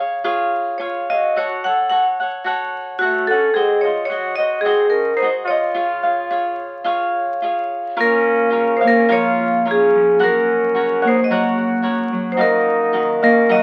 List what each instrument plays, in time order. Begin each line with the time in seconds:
Already playing: cavaquinho F5
0.00 cavaquinho G#4 C#5
0.24 cavaquinho F4 G#4 C#5 F5
0.78 cavaquinho F4 G#4 C#5 F5, vibraphone C#5
0.82 trumpet F4
1.10 trumpet F#4, cavaquinho G#4 C#5 F5, vibraphone D#5
1.36 cavaquinho F#4 A4 C#5 F#5, trumpet F#4, vibraphone C#5
1.64 cavaquinho A4 C#5 F#5, trumpet A4, vibraphone F#5
1.90 cavaquinho F#4 A4 C#5 F#5, trumpet A4, vibraphone F#5
2.20 cavaquinho A4 C#5 F#5
2.44 cavaquinho F#4 A4 C#5 F#5
2.99 vibraphone F#4, cavaquinho F#4 A4 C#5 F#5
3.03 trumpet A3
3.27 trumpet C#4, vibraphone A4, cavaquinho F#5
3.31 cavaquinho A4 C#5
3.52 trumpet C4, cavaquinho F#4 G#4 C5, vibraphone G#4
3.56 cavaquinho D#5
3.81 trumpet F4, cavaquinho C5 D#5, vibraphone C#5
3.86 cavaquinho G#4
4.05 trumpet F#4, vibraphone C#5
4.10 cavaquinho F#4 G#4 C5 D#5
4.36 trumpet F#4, cavaquinho C5 D#5, vibraphone D#5
4.40 cavaquinho G#4
4.61 trumpet C4, cavaquinho F#4, vibraphone G#4
4.66 cavaquinho G#4 C5 D#5
4.90 trumpet C#4, vibraphone A#4
5.15 trumpet D#4, vibraphone C5
5.22 cavaquinho F#4 G#4 C5 D#5
5.44 trumpet F4, vibraphone C#5
5.50 cavaquinho G#4 C5 D#5
5.74 cavaquinho F4 G#4 C#5 F5
6.03 cavaquinho G#4 C#5 F5
6.31 cavaquinho F4 G#4 C#5 F5
6.84 cavaquinho F4 G#4 C#5 F5
7.42 cavaquinho F4 G#4 C#5 F5
7.97 harp A#2, cavaquinho F4 A#4 C#5 F5
8.01 trumpet C#4, vibraphone A#4
8.50 cavaquinho F4 A#4 C#5 F5
8.55 harp C#3
8.77 trumpet D#4, vibraphone C5
8.81 harp A#3, cavaquinho A#4 C#5 F5
8.88 trumpet C#4, vibraphone A#4
9.09 harp F3, cavaquinho F4 A#4 C#5 F5, vibraphone C#5
9.17 trumpet F4
9.40 harp F4
9.65 harp A#2, cavaquinho F4 A#4 C#5 F5
9.71 trumpet C#4, vibraphone G#4
9.94 harp F3
10.19 harp F#2, cavaquinho F#4 A#4 C#5 F#5
10.23 trumpet C#4, vibraphone A#4
10.75 harp C#3, cavaquinho F#4 A#4 C#5 F#5
11.02 harp A#3, cavaquinho A#4 C#5 F#5
11.07 trumpet D#4, vibraphone C5
11.23 trumpet F#4, vibraphone D#5
11.29 harp F#3, cavaquinho F#4 A#4 C#5 F#5, trumpet F#4, vibraphone C#5
11.58 harp F#4
11.82 harp F#2, cavaquinho F#4 A#4 C#5 F#5
12.12 harp F#3
12.32 trumpet D#4, vibraphone C5
12.37 harp F#2, trumpet D#4, cavaquinho F#4 A#4 D#5 F5
12.41 vibraphone A#4
12.93 harp D#3, cavaquinho F#4 A#4 D#5 F5
13.22 harp A#3, trumpet C#4, vibraphone A#4, cavaquinho A#4 D#5 F5
13.49 harp F#3, cavaquinho F#4 A#4 D#5 F5, trumpet F#4, vibraphone D#5